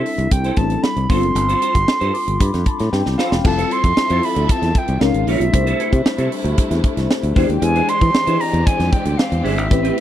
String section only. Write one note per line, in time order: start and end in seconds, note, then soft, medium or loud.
3.46 5.01 F3 medium
3.46 5.00 C4 medium
3.46 5.00 A4 medium
3.46 5.00 E5 medium
5.01 5.53 C#3 medium
5.01 5.53 G#3 medium
5.01 5.53 A#3 medium
5.01 5.53 F4 medium
5.55 7.35 C3 medium
5.55 7.35 G3 medium
5.55 7.35 A3 medium
5.55 7.35 E4 medium
7.37 9.69 E3 medium
7.37 9.69 G#3 medium
7.37 10.00 C4 medium
7.37 9.69 D4 medium
7.37 10.00 G4 medium
9.71 10.00 A3 medium